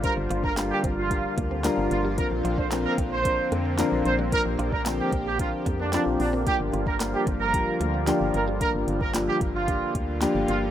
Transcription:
Already playing: supersaw synth D3 F3 G3 A#3 F4
0.03 synth keys G3 D4 F4 C5, horn section A#4, kick, closed hi-hat
0.17 fm bass G1, muted clean electric guitar stroke
0.30 fm bass G1, clean electric guitar F4, closed hi-hat
0.44 clean electric guitar D4, horn section A#4, kick
0.57 synth keys G3 D4 F4 A#4, snare, clap, closed hi-hat
0.71 horn section G4
0.84 fm bass G1, clean electric guitar C4, kick, closed hi-hat
0.98 horn section F4
1.10 synth keys G3 D4 F4 A#4, muted clean electric guitar stroke, kick, closed hi-hat
1.38 fm bass D2, clean electric guitar A#3, kick, closed hi-hat
1.51 clean electric guitar C4
1.64 synth keys G3 D4 F4 A#4, clean electric guitar A#3, snare, clap, closed hi-hat
1.78 fm bass G1
1.91 fm bass G1, horn section F4, muted clean electric guitar stroke, closed hi-hat
2.05 clean electric guitar G3
2.18 synth keys F3 C4 D4 A#4, supersaw synth C4, horn section A#4, kick, closed hi-hat
2.31 fm bass A#1, muted clean electric guitar stroke
2.45 fm bass A#1, clean electric guitar F4, closed hi-hat
2.58 clean electric guitar D4, horn section C5, kick
2.71 synth keys F3 C4 D4 A#4, snare, clap, closed hi-hat
2.85 horn section A#4
2.98 fm bass A#1, clean electric guitar C4, kick, closed hi-hat
3.12 horn section C5
3.25 synth keys F3 C4 D4 A#4, muted clean electric guitar stroke, kick, closed hi-hat
3.52 fm bass F2, clean electric guitar A#3, closed hi-hat
3.65 clean electric guitar C4
3.78 synth keys F3 C4 D4 A#4, clean electric guitar A#3, snare, clap, closed hi-hat
3.92 fm bass A#1
4.05 fm bass A#1, horn section C5, muted clean electric guitar stroke, closed hi-hat
4.19 clean electric guitar G3
4.32 synth keys F3 C4 D4 A#4, supersaw synth G4, horn section A#4, kick, closed hi-hat
4.46 fm bass A#1, muted clean electric guitar stroke
4.59 fm bass A#1, clean electric guitar F4, closed hi-hat
4.72 clean electric guitar D4, horn section A#4, kick
4.86 synth keys F3 C4 D4 A#4, snare, clap, closed hi-hat
5.00 horn section G4
5.12 fm bass A#1, clean electric guitar C4, kick, closed hi-hat
5.26 horn section G4
5.39 synth keys F3 C4 D4 A#4, horn section F4, muted clean electric guitar stroke, kick, closed hi-hat
5.66 fm bass F2, clean electric guitar A#3, kick, closed hi-hat
5.80 clean electric guitar A#3, horn section D4
5.93 synth keys F3 C4 D4 F4, clean electric guitar D4, horn section D4, snare, clap, closed hi-hat
6.06 fm bass A#1
6.20 fm bass A#1, horn section D4, muted clean electric guitar stroke, open hi-hat
6.33 clean electric guitar C4
6.46 supersaw synth D3 G3 F4, synth keys F3 A#3 D4 G4, horn section G4, kick, closed hi-hat
6.60 fm bass G1, muted clean electric guitar stroke
6.73 fm bass G1, clean electric guitar F4, closed hi-hat
6.87 clean electric guitar D4, horn section A#4, kick
7.00 synth keys F3 A#3 D4 A#4, snare, clap, closed hi-hat
7.13 horn section G4
7.27 fm bass G1, clean electric guitar C4, kick, closed hi-hat
7.40 horn section A#4
7.54 synth keys F3 A#3 D4 G4, muted clean electric guitar stroke, kick, closed hi-hat
7.81 fm bass D2, clean electric guitar A#3, closed hi-hat
7.94 clean electric guitar C4
8.07 synth keys F3 A#3 D4 G4, clean electric guitar A#3, snare, clap, closed hi-hat
8.21 fm bass G1
8.34 fm bass G1, horn section A#4, muted clean electric guitar stroke, closed hi-hat
8.48 clean electric guitar G3
8.61 synth keys F3 A#3 D4 A#4, horn section A#4, kick, closed hi-hat
8.74 fm bass G1
8.88 fm bass G1, closed hi-hat
9.01 horn section A#4, kick
9.14 synth keys F3 A#3 D4 F4, snare, clap, closed hi-hat
9.28 horn section G4
9.41 fm bass G1, kick, closed hi-hat
9.54 horn section F4
9.68 synth keys F3 A#3 D4 G4, kick, closed hi-hat
9.95 fm bass D2, kick, closed hi-hat
10.21 synth keys F3 A#3 D4 G4, snare, clap, closed hi-hat
10.35 fm bass G1
10.48 fm bass G1, horn section F4, closed hi-hat

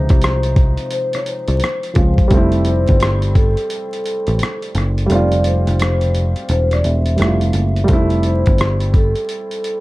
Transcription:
Already playing: upright piano C3 F3 G#3 D#4, vibraphone C5
0.09 picked electric bass C2, kick, closed hi-hat
0.22 cross-stick, closed hi-hat
0.43 closed hi-hat
0.56 kick, closed hi-hat
0.78 closed hi-hat
0.91 vibraphone C5, closed hi-hat
1.13 vibraphone C#5, cross-stick, closed hi-hat
1.26 vibraphone C5, closed hi-hat
1.48 picked electric bass C2, closed hi-hat
1.60 closed hi-hat
1.64 cross-stick
1.83 closed hi-hat
1.93 picked electric bass C#2, upright piano F3 G#3 C4, kick, closed hi-hat
1.98 upright piano F4
2.18 kick, closed hi-hat
2.28 picked electric bass F1, upright piano G3 A3, kick, closed hi-hat
2.34 upright piano C4 E4
2.52 closed hi-hat
2.65 vibraphone C5, closed hi-hat
2.88 picked electric bass G1, kick, closed hi-hat
3.00 cross-stick, closed hi-hat
3.22 closed hi-hat
3.35 vibraphone A4, kick, closed hi-hat
3.57 closed hi-hat
3.70 closed hi-hat
3.93 closed hi-hat
4.06 closed hi-hat
4.27 picked electric bass A1, closed hi-hat
4.39 closed hi-hat
4.43 cross-stick
4.62 closed hi-hat
4.75 picked electric bass F#1, cross-stick, closed hi-hat
4.98 closed hi-hat
5.06 picked electric bass F1, upright piano G3 A3, closed hi-hat
5.11 upright piano C4 F4, vibraphone D5
5.32 closed hi-hat
5.44 vibraphone C5, closed hi-hat
5.67 picked electric bass F1, closed hi-hat
5.80 cross-stick, closed hi-hat
6.01 closed hi-hat
6.15 closed hi-hat
6.36 closed hi-hat
6.49 picked electric bass E1, vibraphone C5, closed hi-hat
6.71 vibraphone D5, cross-stick, closed hi-hat
6.84 picked electric bass E1, vibraphone E5, closed hi-hat
7.06 closed hi-hat
7.16 picked electric bass F1, upright piano G3 A3 C4, closed hi-hat
7.21 upright piano E4, cross-stick
7.27 upright piano F4
7.41 closed hi-hat
7.53 picked electric bass F#1, closed hi-hat
7.76 closed hi-hat
7.84 upright piano G3 A3, closed hi-hat
7.89 picked electric bass F1, upright piano C4, kick
7.93 upright piano E4
8.10 closed hi-hat
8.23 vibraphone C5, closed hi-hat
8.46 picked electric bass G1, kick, closed hi-hat
8.58 cross-stick, closed hi-hat
8.80 closed hi-hat
8.94 vibraphone A4, kick, closed hi-hat
9.15 closed hi-hat
9.29 closed hi-hat
9.51 closed hi-hat
9.64 closed hi-hat

